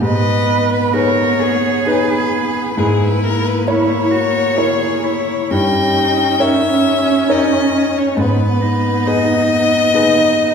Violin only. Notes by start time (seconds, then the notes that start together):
0.01 D#5
0.72 B4
0.95 C#5
1.89 B4
2.78 G#4
3.03 B4
3.25 A#4
3.47 B4
3.67 C#5
5.52 G5
6.41 E5
7.31 D#5
7.98 C#5
8.20 B4
9.07 D#5